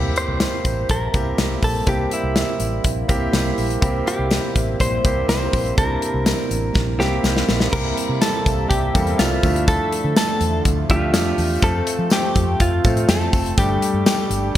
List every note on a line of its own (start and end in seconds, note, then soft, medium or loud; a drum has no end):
0.00 0.10 C2 loud
0.00 7.69 C3 medium
0.00 7.69 G3 medium
0.00 0.57 A#3 medium
0.00 7.69 A#3 medium
0.00 0.57 C4 medium
0.00 0.57 E4 medium
0.00 7.69 E4 medium
0.00 0.57 G4 medium
0.16 0.90 C5 loud
0.16 closed hi-hat medium
0.16 tambourine soft
0.28 0.47 C2 medium
0.40 snare loud
0.40 closed hi-hat medium
0.40 tambourine medium
0.65 0.83 A1 medium
0.65 kick medium
0.65 closed hi-hat medium
0.65 tambourine soft
0.89 1.08 A#1 medium
0.89 1.64 A#4 medium
0.89 kick medium
0.89 closed hi-hat medium
1.13 1.32 C2 medium
1.13 1.62 A#3 medium
1.13 1.63 C4 medium
1.13 1.63 E4 medium
1.13 1.63 G4 medium
1.13 kick medium
1.13 closed hi-hat medium
1.13 tambourine soft
1.38 1.57 C2 medium
1.38 snare loud
1.38 closed hi-hat medium
1.38 tambourine medium
1.63 1.81 A#1 medium
1.63 1.89 A4 medium
1.63 kick medium
1.63 open hi-hat medium
1.63 tambourine medium
1.87 2.05 C2 loud
1.87 2.52 A#3 medium
1.87 2.52 C4 medium
1.87 2.52 E4 medium
1.87 2.52 G4 medium
1.87 2.13 G4 medium
1.87 kick loud
1.87 closed hi-hat medium
1.87 tambourine soft
2.11 2.82 E4 medium
2.11 closed hi-hat medium
2.11 tambourine soft
2.23 2.42 C2 medium
2.36 snare loud
2.36 closed hi-hat medium
2.36 tambourine medium
2.60 2.78 A1 medium
2.60 closed hi-hat medium
2.60 tambourine medium
2.84 3.03 A#1 medium
2.84 kick medium
2.84 closed hi-hat medium
3.08 3.27 C2 medium
3.08 3.57 A#3 medium
3.08 3.57 C4 medium
3.08 3.58 E4 medium
3.08 3.58 G4 loud
3.08 kick medium
3.08 closed hi-hat medium
3.08 tambourine soft
3.33 3.52 C2 medium
3.33 snare loud
3.33 closed hi-hat medium
3.33 tambourine medium
3.58 3.76 A#1 medium
3.58 open hi-hat medium
3.58 tambourine medium
3.70 closed hi-hat medium
3.81 4.01 C2 loud
3.81 4.46 A#3 medium
3.81 4.47 C4 medium
3.81 4.47 E4 medium
3.81 4.47 G4 medium
3.81 kick loud
3.81 closed hi-hat medium
3.81 tambourine soft
4.07 4.76 G4 medium
4.07 closed hi-hat medium
4.19 4.37 C2 medium
4.31 snare loud
4.31 closed hi-hat medium
4.31 tambourine medium
4.55 4.74 A1 medium
4.55 kick medium
4.55 closed hi-hat medium
4.55 tambourine soft
4.80 4.98 A#1 medium
4.80 5.26 C5 loud
4.80 kick medium
4.80 closed hi-hat medium
4.80 tambourine soft
5.04 5.23 C2 medium
5.04 5.53 A#3 medium
5.04 5.53 C4 medium
5.04 5.53 E4 medium
5.04 5.53 G4 medium
5.04 kick medium
5.04 closed hi-hat medium
5.04 tambourine soft
5.28 5.47 C2 medium
5.28 5.77 C5 loud
5.28 snare loud
5.28 closed hi-hat medium
5.28 tambourine medium
5.53 5.71 A#1 medium
5.53 kick medium
5.53 open hi-hat medium
5.53 tambourine medium
5.66 closed hi-hat soft
5.77 5.96 C2 loud
5.77 6.42 A#3 medium
5.77 6.42 C4 medium
5.77 5.84 D4 soft
5.77 7.20 A#4 medium
5.77 6.43 A5 medium
5.77 kick loud
5.77 closed hi-hat medium
5.77 tambourine soft
5.84 6.45 E4 medium
6.02 closed hi-hat medium
6.02 tambourine soft
6.14 6.32 C2 medium
6.26 snare loud
6.26 closed hi-hat medium
6.26 tambourine medium
6.51 6.69 A1 medium
6.51 closed hi-hat medium
6.51 tambourine medium
6.75 7.00 A#1 loud
6.75 kick medium
6.75 snare medium
6.99 7.18 C2 medium
6.99 7.48 A#3 medium
6.99 7.48 C4 medium
6.99 7.48 E4 medium
6.99 7.69 G4 medium
6.99 7.48 G4 medium
6.99 snare medium
6.99 tambourine soft
7.24 7.42 C2 medium
7.24 snare medium
7.24 tambourine medium
7.37 snare medium
7.49 7.67 A#1 medium
7.49 snare medium
7.49 tambourine medium
7.60 snare medium
7.72 7.91 C2 loud
7.72 9.42 C3 medium
7.72 9.41 G3 medium
7.72 8.37 G3 medium
7.72 9.42 A#3 medium
7.72 8.37 A#3 medium
7.72 8.38 C4 medium
7.72 8.38 E4 medium
7.72 8.38 G4 medium
7.72 8.21 A#4 loud
7.72 11.59 E5 medium
7.72 kick loud
7.72 crash loud
7.72 tambourine soft
7.97 closed hi-hat medium
8.09 8.18 C3 medium
8.21 8.69 A4 loud
8.21 snare loud
8.21 closed hi-hat medium
8.21 tambourine medium
8.46 8.64 C2 medium
8.46 kick medium
8.46 closed hi-hat medium
8.46 tambourine medium
8.70 8.89 C2 medium
8.70 9.20 G4 medium
8.70 kick medium
8.70 closed hi-hat medium
8.94 9.13 E2 medium
8.94 9.43 G3 medium
8.94 9.43 A#3 medium
8.94 9.43 C4 medium
8.94 9.42 E4 medium
8.94 9.43 A4 medium
8.94 kick loud
8.94 closed hi-hat medium
8.94 tambourine soft
9.07 closed hi-hat soft
9.19 9.37 C2 medium
9.19 9.64 F4 medium
9.19 snare loud
9.19 closed hi-hat medium
9.19 tambourine medium
9.43 9.80 D2 loud
9.43 11.60 D3 medium
9.43 13.54 F3 medium
9.43 10.21 F3 medium
9.43 10.21 A3 medium
9.43 14.58 A3 medium
9.43 10.21 D4 medium
9.43 10.21 E4 medium
9.43 10.22 F4 medium
9.43 kick medium
9.43 open hi-hat medium
9.43 tambourine medium
9.56 closed hi-hat medium
9.68 10.16 A4 medium
9.68 kick loud
9.68 closed hi-hat medium
9.68 tambourine soft
9.92 closed hi-hat medium
10.04 10.13 D3 loud
10.16 10.62 A4 medium
10.16 snare loud
10.16 closed hi-hat medium
10.16 tambourine medium
10.41 10.59 E2 medium
10.41 closed hi-hat medium
10.41 tambourine medium
10.65 10.84 D2 loud
10.65 kick medium
10.65 closed hi-hat loud
10.65 tambourine soft
10.89 11.13 D2 medium
10.89 11.38 F3 medium
10.89 11.38 A3 medium
10.89 11.38 D4 medium
10.89 11.66 F4 loud
10.89 11.38 G4 medium
10.89 11.38 E5 medium
10.89 kick loud
10.89 closed hi-hat medium
10.89 tambourine soft
11.13 11.32 F2 medium
11.13 snare loud
11.13 closed hi-hat medium
11.13 tambourine medium
11.38 11.56 E2 medium
11.38 open hi-hat medium
11.38 tambourine medium
11.62 11.81 F2 loud
11.62 12.27 F3 medium
11.62 12.27 A3 medium
11.62 12.27 C4 medium
11.62 13.56 C4 medium
11.62 12.28 F4 medium
11.62 12.28 A4 medium
11.62 12.12 A4 loud
11.62 kick loud
11.62 closed hi-hat medium
11.62 tambourine soft
11.86 closed hi-hat loud
11.86 tambourine soft
11.99 12.08 F3 medium
12.10 12.62 G4 loud
12.10 snare loud
12.10 closed hi-hat medium
12.10 tambourine medium
12.35 12.54 F2 medium
12.35 kick medium
12.35 closed hi-hat medium
12.35 tambourine medium
12.60 12.78 F2 medium
12.60 13.11 F4 medium
12.60 kick medium
12.60 closed hi-hat medium
12.84 13.03 A2 medium
12.84 13.33 F3 medium
12.84 13.33 A3 medium
12.84 13.33 C4 medium
12.84 13.33 F4 medium
12.84 13.34 A4 medium
12.84 kick loud
12.84 closed hi-hat medium
12.84 tambourine soft
12.97 closed hi-hat soft
13.08 13.27 F2 medium
13.08 13.58 A4 loud
13.08 snare loud
13.08 closed hi-hat medium
13.08 tambourine medium
13.33 13.52 F1 medium
13.33 kick medium
13.33 open hi-hat medium
13.33 tambourine medium
13.46 closed hi-hat medium
13.57 13.76 G1 loud
13.57 14.22 G3 medium
13.57 14.58 G3 medium
13.57 14.22 A3 medium
13.57 14.58 D4 medium
13.57 14.23 D4 medium
13.57 14.23 G4 medium
13.57 14.05 G4 medium
13.57 14.23 A4 medium
13.57 kick loud
13.57 closed hi-hat medium
13.57 tambourine soft
13.82 closed hi-hat medium
13.82 tambourine soft
13.94 14.03 G2 medium
14.06 14.52 G4 medium
14.06 snare loud
14.06 closed hi-hat medium
14.06 tambourine medium
14.30 14.49 G1 medium
14.30 closed hi-hat medium
14.30 tambourine soft